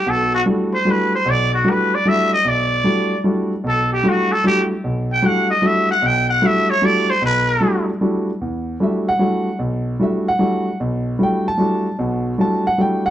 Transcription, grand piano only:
0.06 0.40 B1 medium
0.06 0.40 B2 medium
0.46 0.73 G3 medium
0.46 0.73 A3 medium
0.46 0.73 D4 soft
0.46 0.74 E4 soft
0.46 0.74 F#4 medium
0.85 1.13 G3 medium
0.85 1.13 A3 medium
0.85 1.13 D4 soft
0.85 1.13 E4 medium
0.85 1.13 F#4 medium
1.26 1.60 B1 medium
1.64 1.92 G3 medium
1.64 1.92 A3 soft
1.64 1.92 D4 medium
1.64 1.93 E4 soft
1.64 1.93 F#4 medium
2.05 2.33 G3 medium
2.05 2.33 A3 medium
2.05 2.33 D4 medium
2.05 2.33 E4 soft
2.05 2.33 F#4 medium
2.45 2.79 B1 medium
2.84 3.12 G3 medium
2.84 3.12 A3 soft
2.84 3.12 D4 soft
2.84 3.12 E4 soft
2.84 3.12 F#4 medium
3.24 3.52 G3 medium
3.24 3.52 A3 soft
3.24 3.52 D4 soft
3.24 3.52 E4 medium
3.24 3.52 F#4 medium
3.64 3.98 B1 medium
4.03 4.31 G3 medium
4.03 4.31 A3 soft
4.03 4.31 D4 soft
4.03 4.31 E4 soft
4.03 4.31 F#4 medium
4.44 4.71 G3 medium
4.44 4.71 A3 soft
4.44 4.71 D4 soft
4.44 4.71 E4 soft
4.44 4.72 F#4 medium
4.84 5.18 B1 medium
5.22 5.50 G3 medium
5.22 5.50 A3 medium
5.22 5.51 D4 soft
5.22 5.51 E4 soft
5.22 5.51 F#4 medium
5.62 5.90 G3 medium
5.62 5.90 A3 medium
5.62 5.90 D4 medium
5.62 5.90 E4 medium
5.62 5.90 F#4 medium
6.02 6.37 B1 medium
6.42 6.70 G3 medium
6.42 6.70 A3 medium
6.42 6.70 D4 soft
6.42 6.70 E4 medium
6.42 6.70 F#4 medium
6.82 7.10 G3 medium
6.82 7.10 A3 medium
6.82 7.10 D4 medium
6.82 7.10 E4 soft
6.82 7.10 F#4 medium
7.22 7.56 B1 medium
7.61 7.89 G3 medium
7.61 7.89 A3 medium
7.61 7.89 D4 soft
7.61 7.89 E4 soft
7.61 7.89 F#4 medium
8.01 8.29 G3 medium
8.01 8.29 A3 medium
8.01 8.29 D4 medium
8.01 8.29 E4 medium
8.01 8.29 F#4 medium
8.41 8.75 E2 medium
8.80 9.08 G3 medium
8.80 9.08 A3 medium
8.80 9.08 D4 soft
8.80 9.08 E4 soft
8.80 9.08 F#4 medium
8.80 9.07 E5 medium
9.09 9.57 F#5 loud
9.19 9.47 G3 medium
9.19 9.48 A3 soft
9.19 9.48 D4 soft
9.19 9.48 E4 soft
9.19 9.48 F#4 medium
9.59 9.94 B1 medium
10.00 10.27 G3 medium
10.00 10.28 A3 soft
10.00 10.28 D4 soft
10.00 10.28 E4 soft
10.00 10.28 F#4 medium
10.00 10.27 E5 medium
10.28 10.76 F#5 medium
10.39 10.67 G3 medium
10.39 10.67 A3 soft
10.39 10.67 D4 soft
10.39 10.67 E4 medium
10.39 10.67 F#4 medium
10.80 11.14 B1 medium
11.19 11.46 G3 medium
11.19 11.46 A3 medium
11.19 11.47 D4 soft
11.19 11.47 E4 soft
11.19 11.47 F#4 medium
11.23 11.46 G5 medium
11.48 11.96 A5 loud
11.58 11.86 G3 medium
11.58 11.86 A3 soft
11.58 11.86 D4 soft
11.58 11.86 E4 soft
11.58 11.86 F#4 medium
11.99 12.33 B1 medium
11.99 12.33 B2 medium
12.38 12.65 G3 medium
12.38 12.66 A3 soft
12.38 12.66 D4 medium
12.38 12.66 E4 soft
12.38 12.66 F#4 medium
12.38 12.65 A5 medium
12.67 12.78 F#5 medium
12.78 13.05 G3 medium
12.78 13.05 A3 soft
12.78 13.05 D4 soft
12.78 13.06 E4 medium
12.78 13.06 F#4 medium
12.78 13.05 G5 medium
13.06 13.10 F#5 loud

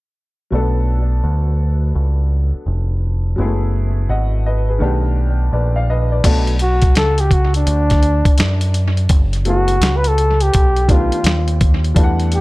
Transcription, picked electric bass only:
0.52 1.20 B1 medium
1.24 1.92 D2 medium
1.95 2.51 C#2 medium
2.54 muted picked electric bass stroke soft
2.66 3.34 F1 medium
3.38 4.06 F#1 medium
4.09 4.77 G#1 medium
4.81 5.49 B1 medium
5.53 6.20 A#1 medium
6.24 6.92 B1 medium
6.96 7.64 C#2 medium
7.67 8.22 D2 medium
8.25 muted picked electric bass stroke soft
8.39 9.06 F#2 medium
9.10 9.77 F#1 loud
9.81 10.49 C#2 medium
10.54 11.09 B1 medium
11.12 muted picked electric bass stroke soft
11.24 11.92 D#2 medium
11.96 12.41 E2 medium

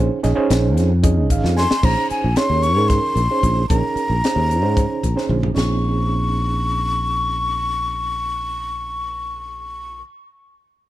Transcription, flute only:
1.58 1.87 C6 medium
1.85 2.10 A#5 medium
2.11 2.38 G#5 medium
2.37 2.64 C6 medium
2.63 2.90 C#6 medium
2.88 3.69 C6 medium
3.69 5.26 A#5 medium
5.56 10.00 C#6 medium

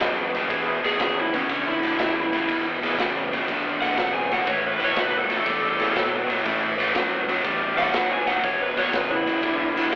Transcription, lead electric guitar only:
0.86 1.16 G#4 medium
1.21 1.34 E4 medium
1.35 1.66 C#4 medium
1.68 2.63 E4 medium
3.82 4.13 F#5 medium
4.14 4.30 G#5 medium
4.33 4.48 F#5 medium
4.48 4.63 C#5 medium
4.67 4.81 B4 medium
4.84 4.98 C#5 medium
5.00 5.14 B4 medium
5.18 6.11 A4 medium
7.78 8.10 F#5 loud
8.12 8.27 G#5 medium
8.27 8.43 F#5 medium
8.44 8.62 C#5 medium
8.62 8.77 B4 medium
8.79 8.95 C#5 medium
8.95 9.10 B4 medium
9.11 9.95 E4 medium

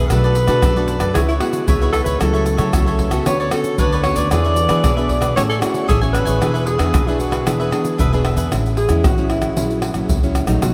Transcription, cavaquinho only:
0.10 0.23 D4 soft
0.10 0.23 A4 medium
0.10 0.23 B4 medium
0.10 0.23 D5 medium
0.24 0.35 A4 medium
0.24 0.35 B4 medium
0.24 0.36 D5 medium
0.36 muted cavaquinho stroke soft
0.48 0.62 A4 medium
0.48 0.62 B4 medium
0.48 0.61 D5 medium
0.63 0.76 D4 medium
0.63 0.76 A4 medium
0.63 0.76 B4 medium
0.63 0.76 D5 medium
0.77 1.01 A4 medium
0.77 1.00 B4 medium
0.77 0.99 D5 medium
1.00 1.14 A4 soft
1.00 1.14 B4 medium
1.00 1.14 D5 medium
1.16 1.28 E4 soft
1.16 1.28 B4 soft
1.16 1.28 C#5 medium
1.16 1.28 E5 soft
1.29 1.40 B4 medium
1.29 1.40 C#5 medium
1.29 1.40 E5 medium
1.40 muted cavaquinho stroke soft
1.68 1.80 E4 medium
1.68 1.81 B4 medium
1.68 1.81 C#5 medium
1.68 1.80 E5 medium
1.81 1.93 B4 medium
1.81 1.93 C#5 medium
1.81 1.93 E5 medium
1.93 2.06 E4 medium
1.93 2.06 B4 medium
1.93 2.05 C#5 soft
1.93 2.04 E5 soft
2.05 2.19 B4 medium
2.05 2.19 C#5 medium
2.05 2.19 E5 medium
2.19 2.32 F#4 soft
2.19 2.33 A4 medium
2.19 2.33 C#5 medium
2.19 2.32 E5 medium
2.33 2.44 A4 medium
2.33 2.45 C#5 medium
2.33 2.45 E5 medium
2.45 muted cavaquinho stroke soft
2.57 2.72 A4 medium
2.57 2.71 C#5 medium
2.57 2.71 E5 medium
2.73 2.85 F#4 medium
2.73 2.86 A4 soft
2.73 2.86 C#5 soft
2.73 2.85 E5 medium
2.86 3.11 A4 medium
2.86 3.11 C#5 medium
2.86 3.10 E5 medium
3.11 3.25 A4 medium
3.11 3.25 C#5 medium
3.11 3.24 E5 medium
3.26 3.38 D4 soft
3.26 3.38 B4 medium
3.26 3.39 C#5 medium
3.26 3.39 D5 medium
3.40 3.51 B4 medium
3.40 3.51 C#5 medium
3.40 3.52 D5 medium
3.52 muted cavaquinho stroke soft
3.79 3.91 D4 medium
3.79 3.91 B4 medium
3.79 3.92 C#5 medium
3.79 3.91 D5 medium
3.92 4.04 B4 medium
3.92 4.04 C#5 medium
3.92 4.04 D5 medium
4.04 4.17 D4 medium
4.04 4.16 B4 soft
4.04 4.16 C#5 medium
4.04 4.15 D5 medium
4.16 4.30 B4 medium
4.16 4.30 C#5 medium
4.16 4.29 D5 medium
4.31 4.43 D4 soft
4.31 4.44 G#4 medium
4.31 4.44 B4 medium
4.31 4.44 E5 medium
4.45 4.56 G#4 medium
4.45 4.56 B4 medium
4.45 4.56 E5 medium
4.56 muted cavaquinho stroke soft
4.68 4.83 G#4 medium
4.68 4.82 B4 medium
4.68 4.82 E5 medium
4.83 4.96 D4 soft
4.83 4.96 G#4 soft
4.83 4.97 B4 medium
4.83 4.96 E5 medium
4.97 5.21 G#4 medium
4.97 5.20 B4 medium
4.97 5.19 E5 medium
5.21 5.35 G#4 medium
5.21 5.35 B4 medium
5.21 5.34 E5 medium
5.36 5.48 A4 soft
5.36 5.49 C#5 soft
5.36 5.49 E5 medium
5.36 5.48 G#5 medium
5.50 5.60 C#5 medium
5.50 5.60 E5 medium
5.50 5.60 G#5 medium
5.61 muted cavaquinho stroke soft
5.88 6.01 A4 medium
5.88 6.01 C#5 medium
5.88 6.01 E5 medium
5.88 6.00 G#5 medium
6.01 6.13 C#5 medium
6.01 6.13 E5 medium
6.01 6.14 G#5 medium
6.13 6.26 A4 soft
6.13 6.26 C#5 soft
6.13 6.25 E5 soft
6.13 6.24 G#5 medium
6.25 6.40 C#5 medium
6.25 6.40 E5 medium
6.25 6.39 G#5 medium
6.40 6.53 D4 soft
6.40 6.54 G#4 medium
6.40 6.54 B4 medium
6.40 6.53 E5 medium
6.54 6.65 G#4 medium
6.54 6.66 B4 medium
6.54 6.66 E5 medium
6.66 muted cavaquinho stroke soft
6.79 6.93 G#4 medium
6.79 6.92 B4 medium
6.79 6.92 E5 medium
6.94 7.06 D4 soft
6.94 7.07 G#4 medium
6.94 7.07 B4 medium
6.94 7.06 E5 medium
7.07 7.32 G#4 medium
7.07 7.31 B4 medium
7.07 7.30 E5 medium
7.31 7.45 G#4 medium
7.31 7.45 B4 medium
7.31 7.45 E5 medium
7.46 7.59 D4 medium
7.46 7.59 G#4 soft
7.46 7.59 B4 medium
7.46 7.58 E5 medium
7.60 7.71 G#4 medium
7.60 7.71 B4 medium
7.60 7.71 E5 medium
7.71 muted cavaquinho stroke soft
7.98 8.11 D4 medium
7.98 8.11 G#4 medium
7.98 8.12 B4 medium
7.98 8.11 E5 medium
8.13 8.24 G#4 medium
8.13 8.24 B4 medium
8.13 8.24 E5 medium
8.24 8.37 D4 soft
8.24 8.37 G#4 soft
8.24 8.36 B4 soft
8.24 8.35 E5 medium
8.37 8.51 G#4 medium
8.37 8.50 B4 medium
8.37 8.50 E5 medium

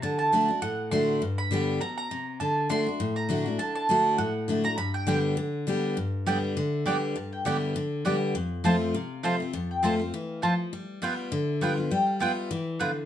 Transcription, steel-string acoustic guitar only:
0.03 0.31 D3 medium
0.32 0.49 D3 medium
0.32 0.49 A3 medium
0.32 0.49 D4 loud
0.32 0.47 F#4 loud
0.48 0.63 D4 soft
0.48 0.61 F#4 medium
0.62 1.19 A2 medium
0.91 1.20 D3 medium
0.91 1.21 A3 medium
0.91 1.21 D4 medium
0.91 1.21 F#4 medium
1.22 1.79 G2 medium
1.51 1.80 D3 medium
1.51 1.80 G3 medium
1.51 1.80 B3 medium
1.51 1.81 G4 loud
1.81 2.10 B2 medium
2.11 2.39 C3 medium
2.41 2.68 D3 medium
2.69 2.86 D3 medium
2.69 2.86 A3 medium
2.69 2.86 D4 medium
2.69 2.85 F#4 loud
2.86 3.00 D4 medium
2.86 2.99 F#4 medium
3.00 3.57 A2 medium
3.29 3.45 D3 medium
3.29 3.46 A3 medium
3.29 3.46 D4 loud
3.29 3.44 F#4 loud
3.46 3.60 D4 medium
3.46 3.59 F#4 medium
3.59 3.88 D3 medium
3.89 4.17 D3 medium
3.89 4.18 A3 medium
3.89 4.18 D4 medium
3.89 4.19 F#4 loud
4.18 4.75 A2 loud
4.48 4.64 D3 medium
4.48 4.65 A3 medium
4.48 4.65 D4 medium
4.48 4.63 F#4 medium
4.64 4.78 D4 soft
4.64 4.77 F#4 medium
4.78 5.35 G2 medium
5.07 5.36 D3 loud
5.07 5.36 G3 medium
5.07 5.36 B3 loud
5.07 5.37 G4 loud
5.37 5.66 D3 medium
5.67 5.96 D3 medium
5.67 5.96 G3 medium
5.67 5.96 B3 medium
5.67 5.97 G4 medium
5.97 6.54 G2 medium
6.26 6.55 D3 medium
6.26 6.55 G3 medium
6.26 6.56 B3 medium
6.26 6.56 G4 medium
6.57 6.84 D3 medium
6.86 7.14 D3 medium
6.86 7.15 G3 medium
6.86 7.15 B3 medium
6.86 7.16 G4 medium
7.16 7.73 G2 medium
7.45 7.74 D3 medium
7.45 7.74 G3 medium
7.45 7.75 B3 medium
7.45 7.75 G4 loud
7.76 8.04 D3 medium
8.05 8.34 D3 medium
8.05 8.34 G3 medium
8.05 8.34 B3 medium
8.05 8.35 G4 medium
8.35 8.92 F2 medium
8.64 8.93 F3 medium
8.64 8.93 A3 medium
8.64 8.94 C4 medium
8.64 8.94 F4 loud
8.94 9.51 C3 medium
9.23 9.40 F3 medium
9.23 9.40 A3 medium
9.23 9.41 C4 medium
9.23 9.39 F4 medium
9.40 9.54 C4 soft
9.40 9.53 F4 medium
9.53 10.11 F2 medium
9.83 9.99 F3 medium
9.83 10.00 A3 medium
9.83 10.00 C4 medium
9.83 9.98 F4 medium
9.99 10.13 C4 soft
9.99 10.13 F4 medium
10.14 10.42 E3 medium
10.43 10.72 F3 medium
10.73 11.00 G3 medium
11.02 11.30 G3 medium
11.02 11.31 B3 medium
11.02 11.32 F4 loud
11.32 11.89 D3 medium
11.61 11.77 G3 medium
11.61 11.78 B3 medium
11.61 11.76 F4 medium
11.78 11.92 B3 soft
11.78 11.91 F4 medium
11.91 12.19 G3 medium
12.20 12.49 G3 medium
12.20 12.50 B3 medium
12.20 12.50 F4 medium
12.51 12.79 E3 medium
12.81 13.05 D3 medium

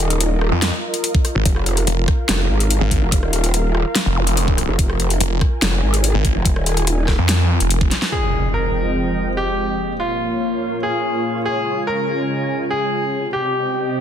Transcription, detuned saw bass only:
0.52 0.71 F2 loud
1.35 1.44 G#1 medium
1.87 2.06 F1 loud
2.81 3.00 G#1 loud
4.06 4.67 F1 loud
5.20 5.40 F1 loud
6.15 6.34 G#1 loud
7.19 7.59 F2 medium
7.60 7.90 F1 loud

